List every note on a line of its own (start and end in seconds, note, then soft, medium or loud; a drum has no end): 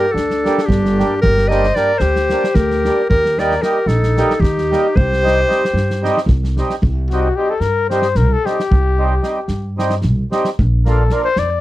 0.00 0.16 G4 medium
0.00 0.13 A#4 loud
0.11 0.47 D2 medium
0.11 0.69 D4 medium
0.11 0.67 A4 medium
0.17 snare soft
0.30 snare soft
0.44 0.60 G3 medium
0.44 0.60 A#3 medium
0.44 0.60 D4 medium
0.44 0.61 G4 medium
0.44 snare soft
0.58 snare soft
0.66 1.01 G1 loud
0.66 1.21 D4 medium
0.66 1.21 G4 medium
0.70 kick medium
0.70 snare soft
0.85 snare soft
0.98 1.14 G3 medium
0.98 1.14 A#3 medium
0.98 1.15 D4 medium
0.98 1.15 G4 medium
0.98 snare soft
1.21 1.69 G1 medium
1.21 1.53 G4 medium
1.21 1.50 A#4 loud
1.21 kick medium
1.38 snare soft
1.48 1.66 G3 medium
1.48 1.66 A#3 medium
1.48 1.66 D4 medium
1.48 1.67 G4 medium
1.48 1.79 C5 medium
1.48 1.76 D#5 loud
1.48 snare soft
1.64 snare soft
1.75 1.91 G3 medium
1.75 1.92 A#3 medium
1.75 1.92 D4 medium
1.75 1.92 G4 medium
1.75 2.03 A#4 medium
1.75 2.00 D5 loud
1.75 snare soft
1.98 2.33 D2 medium
1.98 2.57 G4 medium
1.98 2.56 C5 medium
1.98 snare soft
2.16 snare soft
2.30 2.46 G3 medium
2.30 2.46 A#3 medium
2.30 2.47 D4 medium
2.30 2.47 G4 medium
2.30 snare soft
2.44 snare soft
2.55 2.88 D2 medium
2.55 3.10 G4 medium
2.55 3.09 A#4 medium
2.55 kick medium
2.55 snare soft
2.71 snare soft
2.85 3.01 G3 medium
2.85 3.02 A#3 medium
2.85 3.02 D4 medium
2.85 3.02 G4 medium
2.85 snare soft
3.09 3.56 D#2 medium
3.09 3.41 G4 medium
3.09 3.41 A#4 loud
3.09 kick medium
3.25 snare soft
3.38 3.53 G3 medium
3.38 3.54 A#3 medium
3.38 3.54 D#4 medium
3.38 3.54 G4 medium
3.38 3.64 A#4 medium
3.38 3.63 D5 medium
3.38 snare soft
3.51 snare soft
3.62 3.78 G3 medium
3.62 3.78 A#3 medium
3.62 3.79 D#4 medium
3.62 3.89 G4 medium
3.62 3.79 G4 medium
3.62 3.89 A#4 medium
3.62 snare soft
3.86 4.19 A#1 medium
3.86 4.41 D#4 medium
3.86 4.42 A4 medium
3.86 snare soft
4.03 snare soft
4.16 4.32 G3 medium
4.16 4.33 A#3 medium
4.16 4.33 D#4 medium
4.16 4.34 G4 medium
4.16 snare soft
4.30 snare soft
4.40 4.73 D#2 medium
4.40 5.00 D#4 medium
4.40 4.98 G4 medium
4.40 kick medium
4.40 snare soft
4.58 snare soft
4.71 4.87 G3 medium
4.71 4.87 A#3 medium
4.71 4.88 D#4 medium
4.71 4.88 G4 medium
4.71 snare soft
4.96 5.42 C2 medium
4.96 6.30 G4 medium
4.96 6.29 C5 loud
4.96 kick loud
5.13 snare soft
5.22 5.39 G3 medium
5.22 5.39 C4 medium
5.22 5.40 D#4 medium
5.22 5.40 G4 medium
5.27 snare soft
5.47 5.64 G3 medium
5.47 5.64 C4 medium
5.47 5.64 D#4 medium
5.47 5.65 G4 medium
5.51 snare soft
5.65 snare soft
5.74 6.07 G2 medium
5.74 snare soft
5.91 snare soft
6.02 6.19 G3 medium
6.02 6.19 C4 medium
6.02 6.19 D#4 medium
6.02 6.20 G4 loud
6.02 snare soft
6.18 snare soft
6.26 6.60 C2 medium
6.26 kick medium
6.26 snare soft
6.44 snare soft
6.57 6.74 G3 medium
6.57 6.75 C4 medium
6.57 6.75 D#4 medium
6.57 6.75 G4 medium
6.57 snare soft
6.70 snare soft
6.82 7.29 C2 medium
6.82 kick medium
7.10 7.28 G3 medium
7.10 7.27 C4 medium
7.10 7.28 D#4 medium
7.10 7.37 F#4 medium
7.10 7.28 G4 medium
7.10 snare soft
7.35 7.52 G3 medium
7.35 7.53 C4 soft
7.35 7.53 D#4 soft
7.35 7.52 G4 medium
7.35 7.54 G4 medium
7.50 7.62 A4 medium
7.60 8.17 G2 medium
7.60 7.90 A#4 medium
7.60 snare soft
7.90 8.07 G3 medium
7.90 8.07 C4 medium
7.90 8.07 D#4 medium
7.90 8.08 G4 medium
7.90 8.18 C5 medium
7.90 snare soft
8.02 snare soft
8.15 8.33 C2 medium
8.15 8.34 A#4 medium
8.15 snare soft
8.33 8.47 A4 medium
8.44 8.61 G3 soft
8.44 8.62 C4 medium
8.44 8.62 D#4 medium
8.44 8.62 G4 medium
8.44 9.79 G4 medium
8.44 snare soft
8.60 snare soft
8.71 9.18 C2 medium
8.71 kick medium
8.98 9.15 G3 medium
8.98 9.15 C4 medium
8.98 9.15 D#4 medium
8.98 9.16 G4 medium
9.22 9.39 G3 medium
9.22 9.39 C4 medium
9.22 9.39 D#4 medium
9.22 9.40 G4 medium
9.22 snare soft
9.48 10.05 G2 medium
9.48 snare soft
9.77 9.94 G3 medium
9.77 9.95 C4 medium
9.77 9.95 D#4 medium
9.77 9.95 G4 medium
9.77 snare soft
9.90 snare soft
10.02 10.22 C2 medium
10.02 snare soft
10.31 10.49 G3 medium
10.31 10.49 C4 medium
10.31 10.50 D#4 medium
10.31 10.50 G4 medium
10.31 snare soft
10.45 snare soft
10.59 11.06 A#1 medium
10.59 kick medium
10.85 11.02 F3 medium
10.85 11.02 A#3 medium
10.85 11.03 D4 medium
10.85 11.03 F4 medium
10.85 11.15 A4 medium
10.85 snare soft
11.10 11.27 F3 medium
11.10 11.28 A#3 medium
11.10 11.28 D4 medium
11.10 11.28 F4 medium
11.10 snare soft
11.14 11.24 A#4 medium
11.25 11.41 C5 medium
11.36 11.61 F2 medium
11.36 11.61 D5 medium
11.36 snare soft